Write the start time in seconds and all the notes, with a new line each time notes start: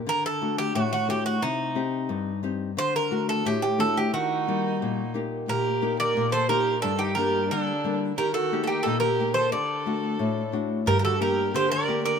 0.07 D3 A#4
0.26 A4
0.41 A3 D4 F#4
0.58 G4
0.75 A2 F#4
0.93 F#4
1.08 A3 D4 F#4 G4
1.26 F#4
1.42 C3 D#4
1.75 C4 D#4 G4
2.09 G2
2.43 C4 D#4 G4
2.77 D3 C5
2.96 A#4
3.11 A3 D4 F#4
3.29 A4
3.45 A2 G4
3.62 G4
3.78 A3 D4 F#4 A4
3.97 G4
4.13 D#3 D#4 F#4
4.47 G3 A#3 D#4
4.82 A#2
5.14 A#3 D#4 G4
5.48 A#2 G4 A#4
5.82 A#3 D#4 G4
6.00 A#4 D5
6.17 A#2
6.32 A4 C5
6.49 A#3 D#4 G4 A#4
6.82 G2 D4 A4
6.99 D#4 G4
7.15 G3 A#3 D4 G4 A#4
7.49 D3 D4 A4
7.84 G3 A#3 D4
8.17 D#3 G4 A#4
8.34 F#4 A4
8.52 A#3 D#4 G4
8.64 F#4 G4 A4
8.68 D#4
8.83 A#2 D#4 A4
9.00 G4 A#4
9.20 A#3 D#4 G4
9.34 A4 C5
9.52 D3 A4 D5
9.86 A3 D4 F#4
10.19 A2
10.52 A3 D4 F#4
10.86 G2 G4 A#4, darbuka dum
10.99 G4 A#4
11.04 F#4 A4
11.20 A#3 D4 G4 A#4
11.54 D3 G4 C5, darbuka tek
11.71 A#4 D5
11.88 A#3 D4 G4, darbuka tek
12.05 A#4 D5